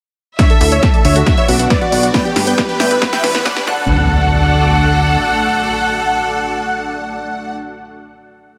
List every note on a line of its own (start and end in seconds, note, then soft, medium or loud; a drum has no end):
0.39 1.26 A3 medium
0.39 0.44 D4 medium
0.39 2.99 D4 medium
0.39 1.26 E4 medium
0.39 0.49 C#5 medium
0.39 2.99 D5 medium
0.39 0.96 E5 medium
0.39 1.26 E5 medium
0.39 0.49 E5 medium
0.39 0.49 E6 medium
0.39 kick loud
0.39 snare soft
0.39 closed hi-hat soft
0.39 riser medium
0.50 0.58 D4 medium
0.50 0.60 A4 medium
0.50 0.60 A5 medium
0.50 closed hi-hat soft
0.61 0.79 D2 loud
0.61 0.69 E4 medium
0.61 0.71 A4 medium
0.61 0.71 A5 medium
0.61 open hi-hat loud
0.72 0.80 D4 medium
0.72 0.82 C#5 medium
0.72 0.82 E5 medium
0.72 0.82 E6 medium
0.72 closed hi-hat medium
0.83 0.93 A4 medium
0.83 0.88 E5 medium
0.83 0.93 A5 medium
0.83 kick loud
0.83 snare soft
0.83 closed hi-hat medium
0.94 1.04 A4 medium
0.94 0.97 D5 medium
0.94 1.03 A5 medium
0.94 closed hi-hat soft
1.05 1.23 D2 loud
1.05 1.12 D4 medium
1.05 1.14 C#5 medium
1.05 1.62 E5 medium
1.05 1.14 E5 medium
1.05 1.14 E6 medium
1.05 open hi-hat medium
1.16 1.25 F#4 medium
1.16 1.19 A4 medium
1.16 1.25 F#5 medium
1.16 closed hi-hat medium
1.26 3.00 B3 medium
1.26 1.32 D4 medium
1.26 2.13 F#4 medium
1.26 1.36 F#4 medium
1.26 1.36 F#5 medium
1.26 2.13 C#6 medium
1.26 kick loud
1.26 snare medium
1.26 closed hi-hat soft
1.37 1.43 B4 medium
1.37 1.47 C#5 medium
1.37 1.47 E5 medium
1.37 1.47 E6 medium
1.37 closed hi-hat soft
1.48 1.66 B1 medium
1.48 1.56 C#4 medium
1.48 1.58 F#4 medium
1.48 1.58 F#5 medium
1.48 open hi-hat loud
1.59 1.67 B3 medium
1.59 1.69 F#4 medium
1.59 1.69 F#5 medium
1.59 closed hi-hat medium
1.70 1.76 B4 medium
1.70 1.80 B4 medium
1.70 2.27 D5 loud
1.70 1.80 D5 medium
1.70 1.80 D6 medium
1.70 kick loud
1.70 snare medium
1.70 closed hi-hat medium
1.81 1.91 F#4 medium
1.81 1.84 F#4 medium
1.81 1.91 F#5 medium
1.81 closed hi-hat soft
1.92 2.10 B1 medium
1.92 2.00 B3 medium
1.92 2.02 F#4 medium
1.92 2.02 F#5 medium
1.92 open hi-hat medium
2.03 2.13 F#4 medium
2.03 2.11 F#4 medium
2.03 2.13 F#5 medium
2.03 closed hi-hat medium
2.14 3.66 G3 medium
2.14 2.19 B3 medium
2.14 3.00 B4 medium
2.14 2.24 B4 medium
2.14 2.24 G5 loud
2.14 2.24 G6 medium
2.14 kick loud
2.14 snare medium
2.14 closed hi-hat medium
2.25 2.33 B3 medium
2.25 2.35 G4 medium
2.25 2.35 G5 medium
2.25 closed hi-hat soft
2.36 2.54 G1 loud
2.36 2.44 D4 medium
2.36 2.46 G4 medium
2.36 3.67 B4 loud
2.36 2.46 G5 medium
2.36 snare medium
2.36 open hi-hat loud
2.47 2.55 B3 medium
2.47 2.57 B4 medium
2.47 2.57 G5 medium
2.47 2.57 G6 medium
2.47 closed hi-hat medium
2.58 2.68 G4 medium
2.58 2.63 D5 medium
2.58 2.68 G5 medium
2.58 kick loud
2.58 snare medium
2.58 closed hi-hat medium
2.69 2.79 G4 medium
2.69 2.72 B4 medium
2.69 2.79 G5 medium
2.69 closed hi-hat soft
2.80 2.98 G1 loud
2.80 2.88 B3 medium
2.80 2.90 E5 medium
2.80 2.90 G5 medium
2.80 2.90 G6 medium
2.80 snare medium
2.80 open hi-hat medium
2.91 2.94 G4 medium
2.91 3.00 B4 medium
2.91 3.01 B5 medium
2.91 closed hi-hat medium
3.02 3.07 F#4 medium
3.02 3.11 B4 medium
3.02 3.11 B5 medium
3.02 kick loud
3.02 snare medium
3.02 closed hi-hat medium
3.13 3.18 B4 medium
3.13 3.22 E5 medium
3.13 3.22 G5 medium
3.13 3.22 G6 medium
3.13 snare medium
3.13 closed hi-hat soft
3.23 3.42 E2 medium
3.23 3.31 E4 medium
3.23 3.33 B4 medium
3.23 3.33 B5 medium
3.23 kick medium
3.23 snare loud
3.23 open hi-hat loud
3.34 3.42 B3 medium
3.34 3.44 B4 medium
3.34 3.44 B5 medium
3.34 snare medium
3.34 closed hi-hat medium
3.45 3.51 B4 medium
3.45 3.55 D5 medium
3.45 3.55 F#5 loud
3.45 3.55 F#6 medium
3.45 kick loud
3.45 snare loud
3.45 closed hi-hat medium
3.56 3.60 G4 medium
3.56 3.66 B4 medium
3.56 3.66 B5 medium
3.56 snare medium
3.56 closed hi-hat soft
3.67 5.17 D2 loud
3.67 7.56 A3 medium
3.67 7.56 D4 medium
3.67 4.08 D4 medium
3.67 7.56 F#4 medium
3.67 7.56 A4 loud
3.67 7.56 D5 medium
3.67 7.55 F#5 loud
3.67 7.56 F#5 medium
3.67 7.56 F#6 medium
3.67 kick loud
3.67 impact medium